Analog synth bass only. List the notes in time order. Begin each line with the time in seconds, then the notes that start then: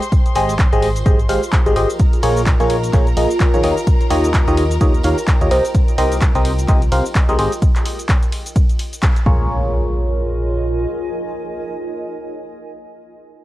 0.36 G#1
0.73 G#1
1.29 G#1
1.66 G#1
1.76 G#1
2.23 A#1
2.60 A#1
2.93 A#1
3.17 A#1
3.54 A#1
3.64 D#2
4.11 D#2
4.48 D#2
4.81 D#2
5.04 D#2
5.41 D#2
5.51 C2
5.98 C2
6.35 C2
6.68 C2
6.92 C2
7.29 C2
7.39 G#1
9.26 A#1